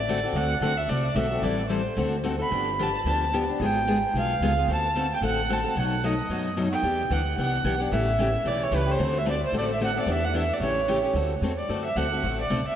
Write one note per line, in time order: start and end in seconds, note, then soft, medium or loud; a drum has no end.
0.00 0.23 A1 medium
0.00 0.38 D5 medium
0.09 0.18 D3 medium
0.09 0.18 A3 loud
0.09 0.19 C4 medium
0.09 0.19 F#4 loud
0.09 0.19 A4 medium
0.24 0.35 C4 soft
0.24 0.35 F#4 medium
0.24 0.35 A4 medium
0.33 0.55 D2 medium
0.33 0.53 D3 medium
0.33 0.54 A3 medium
0.33 0.54 C4 medium
0.33 0.54 F#4 medium
0.33 0.54 A4 medium
0.33 0.61 F#5 medium
0.61 0.84 D2 medium
0.61 0.72 D3 medium
0.61 0.72 A3 medium
0.61 0.72 C4 medium
0.61 0.72 F#4 medium
0.61 0.72 A4 medium
0.61 0.79 F#5 medium
0.77 0.91 E5 medium
0.88 1.11 C2 medium
0.88 1.07 D3 medium
0.88 1.07 A3 medium
0.88 1.07 C4 medium
0.88 1.07 F#4 medium
0.88 1.07 A4 medium
0.88 1.18 D5 medium
1.15 1.38 B1 medium
1.15 1.26 D3 medium
1.15 1.26 A3 medium
1.15 1.26 C4 medium
1.15 1.26 F#4 loud
1.15 1.26 A4 medium
1.15 1.45 E5 medium
1.30 1.43 C4 soft
1.30 1.43 F#4 medium
1.30 1.42 A4 medium
1.42 1.86 A1 medium
1.42 1.61 E3 medium
1.42 1.61 G3 medium
1.42 1.61 C4 medium
1.42 1.62 E4 medium
1.42 1.62 A4 medium
1.42 1.69 D5 medium
1.69 1.80 E3 medium
1.69 1.80 G3 medium
1.69 1.80 C4 medium
1.69 1.80 E4 medium
1.69 1.80 A4 medium
1.69 2.09 C5 medium
1.97 2.40 D2 medium
1.97 2.15 D3 medium
1.97 2.15 A3 medium
1.97 2.15 C4 medium
1.97 2.15 F#4 medium
1.97 2.15 A4 medium
2.23 2.34 D3 medium
2.23 2.34 A3 medium
2.23 2.34 C4 medium
2.23 2.34 F#4 medium
2.23 2.34 A4 loud
2.39 2.51 C4 soft
2.39 2.51 F#4 medium
2.39 2.50 A4 medium
2.39 2.84 B5 medium
2.51 2.94 G1 medium
2.51 2.69 D3 medium
2.51 2.70 F3 medium
2.51 2.70 B3 medium
2.51 2.70 D4 medium
2.51 2.70 G4 medium
2.79 2.89 D3 medium
2.79 2.89 F3 medium
2.79 2.89 B3 medium
2.79 2.89 D4 medium
2.79 2.89 G4 loud
2.79 2.95 A5 medium
2.95 3.00 A5 medium
3.04 3.48 D2 medium
3.04 3.24 D3 medium
3.04 3.24 F3 medium
3.04 3.24 B3 medium
3.04 3.24 D4 medium
3.04 3.24 G4 medium
3.04 3.45 A5 loud
3.33 3.43 D3 medium
3.33 3.43 F3 medium
3.33 3.43 B3 medium
3.33 3.43 D4 medium
3.33 3.43 G4 loud
3.48 3.60 B3 soft
3.48 3.60 D4 medium
3.48 3.59 G4 medium
3.60 4.03 G#1 medium
3.60 3.78 D3 medium
3.60 3.78 G#3 medium
3.60 3.78 B3 medium
3.60 3.78 F4 medium
3.60 3.79 G#4 medium
3.64 4.12 G5 medium
3.87 3.97 D3 medium
3.87 3.97 G#3 medium
3.87 3.97 B3 medium
3.87 3.97 F4 medium
3.87 3.97 G#4 medium
4.14 4.36 B1 medium
4.14 4.32 D3 medium
4.14 4.33 G#3 medium
4.14 4.33 B3 medium
4.14 4.33 F4 medium
4.14 4.33 G#4 medium
4.18 4.66 F5 medium
4.40 4.63 C#2 medium
4.40 4.51 D3 medium
4.40 4.51 G#3 medium
4.40 4.52 B3 medium
4.40 4.52 F4 medium
4.40 4.52 G#4 loud
4.57 4.68 B3 soft
4.57 4.68 F4 medium
4.57 4.67 G#4 medium
4.68 5.11 D2 medium
4.68 4.86 D3 medium
4.68 4.87 A3 medium
4.68 4.87 C4 medium
4.68 4.87 F#4 medium
4.68 4.87 A4 medium
4.73 5.09 A5 medium
4.96 5.05 D3 medium
4.96 5.05 A3 medium
4.96 5.05 C4 medium
4.96 5.05 F#4 medium
4.96 5.06 A4 medium
5.14 5.23 G5 medium
5.21 5.64 A1 medium
5.21 5.40 D3 medium
5.21 5.40 A3 medium
5.21 5.40 C4 medium
5.21 5.40 F#4 medium
5.21 5.41 A4 medium
5.21 5.54 F#5 medium
5.49 5.59 D3 medium
5.49 5.59 A3 medium
5.49 5.59 C4 loud
5.49 5.59 F#4 loud
5.49 5.59 A4 loud
5.49 5.78 A5 medium
5.64 5.76 C4 medium
5.64 5.76 F#4 medium
5.64 5.75 A4 medium
5.76 6.19 B1 medium
5.76 5.94 B2 medium
5.76 5.94 F#3 medium
5.76 5.94 A3 medium
5.76 5.94 D#4 medium
5.76 5.94 F#4 medium
5.76 6.07 F#5 medium
6.03 6.13 B2 medium
6.03 6.13 F#3 medium
6.03 6.13 A3 medium
6.03 6.13 D#4 medium
6.03 6.13 F#4 medium
6.03 6.46 D#5 medium
6.29 6.72 F#2 medium
6.29 6.48 B2 medium
6.29 6.48 F#3 medium
6.29 6.48 A3 medium
6.29 6.48 D#4 medium
6.29 6.48 F#4 medium
6.57 6.66 B2 medium
6.57 6.67 F#3 loud
6.57 6.67 A3 medium
6.57 6.67 D#4 loud
6.57 6.67 F#4 medium
6.71 6.83 A3 soft
6.71 6.83 D#4 medium
6.71 6.83 F#4 medium
6.71 7.14 G5 loud
6.83 7.04 E2 medium
6.83 7.01 E3 medium
6.83 7.01 B3 medium
6.83 7.01 D4 medium
6.83 7.02 G4 medium
7.10 7.33 D2 medium
7.10 7.20 E3 medium
7.10 7.21 B3 medium
7.10 7.21 D4 medium
7.10 7.21 G4 medium
7.10 7.37 F#5 medium
7.37 7.60 C2 medium
7.37 7.56 E3 medium
7.37 7.56 B3 medium
7.37 7.56 D4 medium
7.37 7.56 G4 medium
7.37 7.77 F#5 loud
7.64 7.87 B1 medium
7.64 7.73 E3 medium
7.64 7.74 B3 medium
7.64 7.74 D4 medium
7.64 7.74 G4 loud
7.80 7.92 B3 soft
7.80 7.91 D4 medium
7.80 7.91 G4 medium
7.92 8.35 A1 medium
7.92 8.10 C#3 medium
7.92 8.10 E3 medium
7.92 8.10 A3 medium
7.92 8.10 C#4 medium
7.92 8.10 G4 medium
7.92 8.49 E5 medium
8.19 8.27 C#3 medium
8.19 8.28 E3 medium
8.19 8.28 A3 medium
8.19 8.28 C#4 medium
8.19 8.28 G4 loud
8.45 8.68 B1 medium
8.45 8.63 C#3 medium
8.45 8.63 E3 medium
8.45 8.64 A3 medium
8.45 8.64 C#4 medium
8.45 8.63 G4 medium
8.45 8.65 D5 medium
8.63 8.77 C#5 medium
8.71 8.95 C#2 medium
8.71 8.81 C#3 medium
8.71 8.81 E3 medium
8.71 8.81 A3 loud
8.71 8.81 C#4 medium
8.71 8.81 G4 loud
8.76 8.92 B4 medium
8.86 8.98 A3 soft
8.86 8.99 C#4 medium
8.86 8.98 G4 medium
8.91 9.20 C5 medium
8.98 9.42 D2 loud
8.98 9.17 D3 medium
8.98 9.17 A3 medium
8.98 9.17 C4 medium
8.98 9.17 F#4 medium
8.98 9.17 A4 medium
9.18 9.28 E5 medium
9.26 9.35 D3 medium
9.26 9.35 A3 medium
9.26 9.35 C4 medium
9.26 9.35 F#4 medium
9.26 9.35 A4 medium
9.31 9.43 D5 medium
9.46 9.55 C5 medium
9.52 9.96 A1 medium
9.52 9.71 D3 medium
9.52 9.71 A3 medium
9.52 9.71 C4 medium
9.52 9.72 F#4 medium
9.52 9.72 A4 medium
9.59 9.64 D5 medium
9.73 9.82 E5 medium
9.81 9.89 D3 medium
9.81 9.89 A3 loud
9.81 9.90 C4 loud
9.81 9.90 F#4 medium
9.81 9.90 A4 medium
9.81 9.96 F#5 medium
9.96 10.07 C4 medium
9.96 10.07 F#4 medium
9.96 10.07 A4 medium
9.96 10.13 D5 medium
10.06 10.50 E2 medium
10.06 10.25 E3 medium
10.06 10.25 B3 medium
10.06 10.25 D4 medium
10.06 10.25 G4 medium
10.12 10.26 E5 medium
10.24 10.35 F#5 medium
10.34 10.43 E3 medium
10.34 10.43 B3 medium
10.34 10.43 D4 medium
10.34 10.44 G4 loud
10.38 10.55 E5 medium
10.53 10.62 D5 medium
10.60 11.04 A1 medium
10.60 10.79 C#3 medium
10.60 10.79 E3 medium
10.60 10.80 A3 medium
10.60 10.80 C#4 medium
10.60 10.80 G4 medium
10.60 11.01 C#5 medium
10.88 10.97 C#3 medium
10.88 10.97 E3 medium
10.88 10.97 A3 medium
10.88 10.97 C#4 loud
10.88 10.98 G4 loud
11.03 11.14 A3 soft
11.03 11.15 C#4 medium
11.03 11.14 G4 medium
11.14 11.40 D2 medium
11.14 11.33 D3 medium
11.14 11.33 A3 medium
11.14 11.33 C4 medium
11.14 11.34 F#4 medium
11.14 11.34 A4 medium
11.41 11.68 E2 medium
11.41 11.51 D3 medium
11.41 11.51 A3 medium
11.41 11.52 C4 medium
11.41 11.52 F#4 medium
11.41 11.52 A4 medium
11.58 11.83 D5 medium
11.69 11.95 F#2 medium
11.69 11.87 D3 medium
11.69 11.87 A3 medium
11.69 11.87 C4 medium
11.69 11.88 F#4 medium
11.69 11.88 A4 medium
11.85 11.98 E5 medium
11.96 12.22 D2 medium
11.96 12.05 D3 medium
11.96 12.06 A3 medium
11.96 12.06 C4 medium
11.96 12.06 F#4 medium
11.96 12.06 A4 medium
11.96 12.38 F#5 medium
12.12 12.22 C4 soft
12.12 12.23 F#4 soft
12.12 12.23 A4 medium
12.22 12.49 A1 medium
12.22 12.41 D3 medium
12.22 12.41 A3 medium
12.22 12.41 C4 medium
12.22 12.42 F#4 medium
12.22 12.42 A4 medium
12.41 12.65 D5 medium
12.50 12.64 B1 medium
12.50 12.59 D3 medium
12.50 12.59 A3 medium
12.50 12.59 C4 medium
12.50 12.59 F#4 medium
12.50 12.60 A4 medium
12.66 12.76 E5 medium
12.66 muted upright bass stroke soft